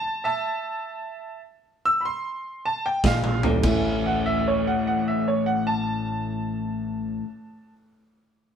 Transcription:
0.00 0.23 A5 loud
0.24 1.40 E5 medium
0.24 1.41 A5 medium
1.85 2.04 E6 loud
2.01 2.08 B5 medium
2.05 2.63 C6 medium
2.65 2.84 A5 medium
2.86 3.04 G5 medium
3.04 3.60 A#1 medium
3.04 3.40 A#2 medium
3.04 3.40 F3 loud
3.04 3.44 F5 medium
3.04 kick medium
3.04 snare medium
3.24 mid tom medium
3.43 3.62 A#2 medium
3.43 3.62 E3 medium
3.43 3.62 G3 medium
3.43 3.62 A3 medium
3.43 3.62 C#4 medium
3.43 3.62 E4 medium
3.43 3.62 A4 medium
3.43 floor tom medium
3.63 7.20 A1 medium
3.63 7.22 A2 medium
3.63 7.23 A2 medium
3.63 7.24 E3 medium
3.63 7.23 A3 medium
3.63 7.26 A3 medium
3.63 7.24 C#4 medium
3.63 7.25 E4 medium
3.63 7.26 E5 medium
3.63 kick medium
3.63 crash medium
3.67 7.27 C#4 loud
4.06 4.24 F#5 medium
4.26 4.44 E5 medium
4.48 4.65 C#5 medium
4.67 4.85 F#5 medium
4.87 5.05 F#5 medium
5.08 5.25 E5 medium
5.28 5.45 C#5 medium
5.46 5.64 F#5 medium
5.67 7.71 A5 medium

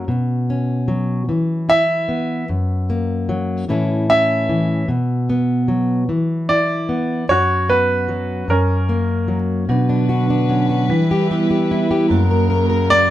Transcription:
0.08 1.29 B2 soft
0.50 1.25 C#4 soft
0.88 1.24 F#3 soft
1.29 2.49 E3 soft
1.69 2.44 E4 soft
1.69 2.45 E5 medium
2.09 2.44 B3 soft
2.49 3.68 F#2 medium
2.90 3.64 A#3 soft
3.29 3.64 F#3 soft
3.68 4.83 A2 medium
3.68 4.48 E3 soft
3.68 4.09 C#4 soft
3.68 4.84 E4 soft
3.68 4.85 A4 soft
4.10 4.84 C#4 soft
4.10 4.85 E5 medium
4.49 4.89 E3 soft
4.88 6.08 B2 medium
5.30 6.04 B3 soft
5.68 6.03 F#3 soft
6.09 7.28 E3 soft
6.49 7.23 E4 soft
6.49 7.24 D5 medium
6.89 7.23 B3 soft
7.29 8.47 F#2 medium
7.29 8.46 F#4 soft
7.29 7.69 C#5 medium
7.69 8.44 B3 soft
7.69 8.45 B4 medium
8.09 8.43 F#3 soft
8.48 9.69 F#2 soft
8.48 9.66 C#4 soft
8.48 9.36 A#4 medium
8.89 9.65 A#3 soft
9.28 9.64 F#3 soft
9.69 10.90 B2 medium
9.69 10.89 D3 medium
9.69 10.49 F#3 medium
9.69 10.99 D4 medium
9.69 12.09 B4 medium
9.89 10.29 D4 soft
10.09 10.68 F#4 soft
10.30 10.85 D4 soft
10.49 10.90 F#3 soft
10.49 10.85 C#4 soft
10.69 10.90 F#4 soft
10.89 12.10 E3 medium
10.89 11.30 G3 medium
10.89 12.09 G3 medium
10.89 12.09 E4 soft
11.11 11.30 G4 medium
11.31 12.19 G3 soft
11.31 12.11 B3 soft
11.31 12.19 E4 soft
11.31 11.49 G4 medium
11.51 11.90 G4 soft
11.71 12.06 E4 soft
11.91 12.06 G4 medium
12.10 13.10 F#2 medium
12.10 13.10 C#3 medium
12.10 13.10 F#3 medium
12.10 12.89 A#3 medium
12.10 13.10 F#4 medium
12.10 13.10 A#4 medium
12.31 12.49 A#4 soft
12.50 12.69 A#4 soft
12.70 13.08 A#4 medium
12.90 13.10 A#3 soft
12.90 13.10 D5 medium

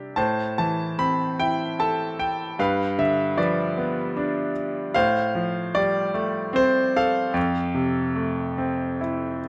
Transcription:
0.00 0.13 C3 medium
0.00 0.18 G3 soft
0.00 0.13 C4 soft
0.00 0.14 D4 soft
0.00 0.15 G4 soft
0.16 2.55 A2 soft
0.16 1.36 C5 soft
0.16 0.55 A5 medium
0.58 2.16 E3 soft
0.58 1.00 A5 medium
0.99 2.55 C4 soft
0.99 1.41 B5 medium
1.40 2.56 E4 soft
1.40 1.77 G5 medium
1.80 2.57 A4 soft
1.80 2.17 A5 medium
2.19 2.60 G5 medium
2.59 4.91 G2 medium
2.59 3.37 B4 soft
2.59 3.00 F5 medium
2.98 4.52 D3 soft
2.98 3.39 E5 medium
3.37 4.91 F3 soft
3.37 4.53 B4 soft
3.37 4.52 D5 medium
3.77 4.92 B3 soft
4.17 4.93 D4 soft
4.94 7.32 A2 medium
4.94 6.11 C5 medium
4.94 5.77 F5 medium
5.35 6.92 F3 soft
5.75 7.32 G3 soft
5.75 6.58 D5 medium
6.14 7.32 A3 soft
6.53 7.33 C4 medium
6.53 6.97 C5 medium
6.96 8.98 A4 medium
6.96 8.98 F5 medium
7.34 9.48 F2 medium
7.74 9.39 C3 soft
8.16 9.48 A3 soft
8.58 9.48 C4 soft
9.01 9.48 E4 soft

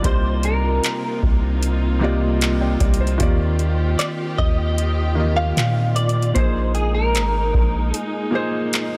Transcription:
0.00 1.25 C3 medium
0.00 3.17 C3 medium
0.00 1.26 G3 medium
0.00 1.26 A#3 medium
0.00 3.17 A#3 medium
0.00 6.32 C4 medium
0.00 6.32 F4 medium
0.04 0.80 C2 loud
0.04 3.17 D#4 medium
0.04 1.26 D#4 medium
0.04 1.27 F4 medium
0.04 0.45 C5 loud
0.04 1.27 D5 medium
0.04 kick loud
0.04 closed hi-hat medium
0.43 1.19 A#4 medium
0.43 closed hi-hat medium
0.84 clap loud
0.84 closed hi-hat medium
1.23 2.77 C2 loud
1.23 kick medium
1.63 closed hi-hat medium
1.99 2.92 C3 medium
1.99 2.93 G3 medium
1.99 2.93 A#3 medium
1.99 2.93 D#4 medium
2.03 2.94 F4 medium
2.03 2.42 D5 loud
2.41 clap loud
2.41 closed hi-hat medium
2.61 2.79 D5 medium
2.61 2.80 G5 medium
2.80 3.18 C2 loud
2.80 3.00 G4 medium
2.80 2.99 D5 medium
2.80 kick medium
2.80 closed hi-hat medium
2.94 closed hi-hat medium
3.01 3.20 G4 medium
3.01 3.38 C5 medium
3.07 closed hi-hat soft
3.18 3.96 D#2 loud
3.18 4.41 D#3 medium
3.18 6.33 D#3 medium
3.18 4.42 A#3 medium
3.18 4.42 F4 medium
3.18 6.33 G4 medium
3.18 4.43 G4 medium
3.18 kick loud
3.18 closed hi-hat medium
3.23 4.43 D5 loud
3.59 closed hi-hat medium
3.99 4.10 D5 loud
3.99 clap loud
3.99 closed hi-hat medium
4.38 5.53 D#2 loud
4.38 5.33 D#5 loud
4.38 kick medium
4.78 closed hi-hat medium
5.15 6.08 D#3 medium
5.15 6.08 A#3 medium
5.15 6.09 F4 medium
5.15 6.09 G4 medium
5.20 6.10 D#5 medium
5.37 5.95 F5 loud
5.57 6.33 A#2 loud
5.57 clap loud
5.57 closed hi-hat medium
5.96 6.37 D5 loud
5.96 closed hi-hat medium
6.09 closed hi-hat medium
6.22 closed hi-hat soft
6.34 7.17 A#1 loud
6.34 7.57 A#2 medium
6.34 8.97 G#3 medium
6.34 7.57 A#3 medium
6.34 8.97 A#3 medium
6.34 8.97 D#4 medium
6.34 7.58 D#4 medium
6.34 7.59 G#4 medium
6.34 6.74 C5 medium
6.34 kick loud
6.34 closed hi-hat medium
6.38 7.59 C5 medium
6.75 6.94 G#4 medium
6.75 closed hi-hat medium
6.95 7.98 A#4 medium
7.15 7.52 G#1 loud
7.15 clap loud
7.15 closed hi-hat medium
7.54 7.92 A#1 loud
7.54 kick medium
7.94 8.49 G#4 medium
7.94 closed hi-hat medium
8.31 8.97 A#2 medium
8.31 8.97 A#3 medium
8.31 8.97 D#4 medium
8.31 8.97 G#4 medium
8.35 8.97 C5 loud
8.73 clap loud
8.73 closed hi-hat medium

